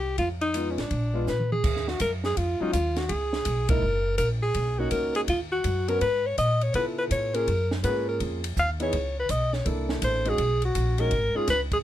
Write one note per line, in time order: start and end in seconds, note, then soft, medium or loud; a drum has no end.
0.00 0.14 C2 medium
0.00 0.16 G4 medium
0.18 0.74 F2 medium
0.18 0.29 F4 medium
0.18 kick soft
0.18 ride soft
0.41 0.72 D#4 medium
0.41 ride soft
0.54 0.75 G#3 medium
0.54 0.76 B3 soft
0.54 0.76 D#4 soft
0.54 0.76 F4 medium
0.54 hi-hat pedal soft
0.54 ride medium
0.71 0.81 C#4 soft
0.78 0.90 A1 medium
0.78 1.28 D4 medium
0.78 snare soft
0.78 ride soft
0.91 1.25 A#1 medium
0.91 kick soft
0.91 ride soft
1.14 1.26 G#3 medium
1.14 1.26 B3 medium
1.14 1.26 D4 medium
1.14 1.26 F4 medium
1.27 1.61 A#2 medium
1.27 1.50 B4 medium
1.27 snare soft
1.27 hi-hat pedal soft
1.40 mid tom soft
1.52 1.90 G#4 medium
1.52 mid tom medium
1.64 1.99 D#2 medium
1.64 kick medium
1.64 crash medium
1.76 snare soft
1.88 2.01 F#4 medium
1.88 snare soft
2.00 2.36 F#2 medium
2.00 2.12 A#4 medium
2.00 kick soft
2.00 hi-hat pedal medium
2.00 ride medium
2.24 2.39 G#4 medium
2.24 snare soft
2.37 2.59 F2 medium
2.37 2.63 F4 medium
2.37 kick soft
2.37 ride medium
2.60 2.72 F#3 medium
2.60 2.72 G#3 medium
2.60 2.73 C#4 medium
2.60 2.72 D#4 medium
2.60 2.73 F4 medium
2.60 muted upright bass stroke soft
2.73 3.09 D#2 medium
2.73 2.99 F4 medium
2.73 kick soft
2.73 hi-hat pedal medium
2.73 ride medium
2.96 3.06 F#4 medium
2.96 snare soft
2.96 ride soft
3.06 3.10 F#4 medium
3.06 3.69 G#4 medium
3.06 ride medium
3.10 3.45 C#2 medium
3.10 kick soft
3.33 snare soft
3.45 3.81 B1 medium
3.45 kick soft
3.45 hi-hat pedal soft
3.45 ride medium
3.69 3.81 G#3 medium
3.69 3.81 A#3 medium
3.69 3.82 D#4 medium
3.69 3.82 E4 medium
3.69 4.15 A#4 medium
3.69 kick medium
3.69 ride medium
3.82 4.18 F#1 medium
4.18 4.54 A#1 medium
4.18 4.29 A#4 medium
4.18 kick soft
4.18 hi-hat pedal soft
4.18 ride medium
4.42 4.80 G#4 medium
4.54 4.91 B1 medium
4.54 kick soft
4.54 ride medium
4.78 5.25 A#3 medium
4.78 5.26 C#4 medium
4.78 5.26 D#4 medium
4.78 4.91 F#4 medium
4.78 5.26 F#4 medium
4.91 5.27 C#2 medium
4.91 5.14 A#4 medium
4.91 kick soft
4.91 hi-hat pedal medium
4.91 ride medium
5.15 5.21 G#4 medium
5.15 ride soft
5.28 5.63 D#2 medium
5.28 5.40 F4 medium
5.28 kick soft
5.28 ride medium
5.52 5.90 F#4 medium
5.64 6.00 F#2 medium
5.64 kick soft
5.64 hi-hat pedal medium
5.64 ride medium
5.88 6.00 B3 medium
5.88 6.00 C#4 medium
5.88 6.00 F#4 medium
5.88 6.01 A#4 medium
5.88 ride soft
6.01 6.37 G#2 medium
6.01 6.27 B4 loud
6.01 kick soft
6.01 ride medium
6.26 6.38 C#5 medium
6.38 6.73 A#2 medium
6.38 6.65 D#5 medium
6.38 kick soft
6.38 hi-hat pedal medium
6.38 ride medium
6.61 6.75 C#5 medium
6.61 ride soft
6.74 7.10 C#3 medium
6.74 7.30 B3 medium
6.74 7.30 E4 soft
6.74 7.30 F4 soft
6.74 7.30 A4 medium
6.74 6.86 B4 medium
6.74 kick soft
6.74 ride medium
6.98 7.04 B4 medium
7.11 7.46 A2 medium
7.11 7.36 C#5 medium
7.11 kick soft
7.11 hi-hat pedal medium
7.11 ride medium
7.34 7.46 A#3 medium
7.34 7.46 C#4 medium
7.34 7.46 F4 medium
7.34 7.46 G#4 medium
7.34 7.71 A#4 medium
7.34 ride soft
7.47 7.83 F#2 medium
7.47 kick soft
7.47 ride medium
7.71 snare medium
7.83 8.19 G#2 medium
7.83 8.39 A#3 medium
7.83 8.39 C#4 medium
7.83 8.39 F4 medium
7.83 8.40 G#4 medium
7.83 8.06 B4 medium
7.83 kick soft
7.83 hi-hat pedal medium
7.83 ride medium
8.09 8.20 A#4 medium
8.20 8.55 F2 medium
8.20 kick soft
8.20 ride medium
8.44 ride medium
8.57 8.92 D#2 medium
8.57 8.69 F5 medium
8.57 kick soft
8.57 hi-hat pedal medium
8.80 8.91 B3 medium
8.80 8.92 D#4 medium
8.80 8.92 E4 medium
8.80 8.92 G#4 medium
8.80 9.15 C#5 medium
8.80 ride soft
8.93 9.28 C#2 medium
8.93 kick soft
8.93 ride medium
9.19 9.32 B4 medium
9.29 9.65 B1 medium
9.29 9.55 D#5 medium
9.29 kick soft
9.29 hi-hat pedal soft
9.29 ride medium
9.53 9.66 C#5 medium
9.53 snare soft
9.65 10.01 C2 medium
9.65 10.21 A#3 medium
9.65 10.21 D4 medium
9.65 10.21 E4 medium
9.65 10.21 A4 medium
9.65 kick soft
9.65 ride medium
9.89 snare medium
10.02 10.37 A1 medium
10.02 10.31 C5 medium
10.02 kick soft
10.02 hi-hat pedal soft
10.02 ride medium
10.25 10.37 G#3 medium
10.25 10.37 C#4 medium
10.25 10.38 D#4 medium
10.25 10.38 F#4 medium
10.25 ride soft
10.29 10.64 G#4 medium
10.38 10.74 B1 medium
10.38 kick soft
10.38 ride medium
10.62 11.02 F#4 medium
10.62 ride soft
10.75 11.11 A#1 medium
10.75 kick soft
10.75 hi-hat pedal soft
10.75 ride medium
10.98 11.10 G#3 medium
10.98 11.11 C#4 medium
10.98 11.11 D#4 medium
10.98 11.11 F#4 medium
10.98 11.38 A#4 medium
10.98 ride soft
11.11 11.33 G#1 medium
11.11 kick soft
11.11 ride medium
11.34 11.47 G#3 medium
11.34 11.47 C#4 medium
11.34 11.47 D#4 medium
11.34 11.48 F4 medium
11.34 11.49 G#4 medium
11.34 muted upright bass stroke soft
11.48 11.83 C#2 medium
11.48 11.60 B4 medium
11.48 kick soft
11.48 snare soft
11.48 hi-hat pedal soft
11.48 ride medium
11.72 11.79 G#4 medium
11.72 kick soft
11.72 ride soft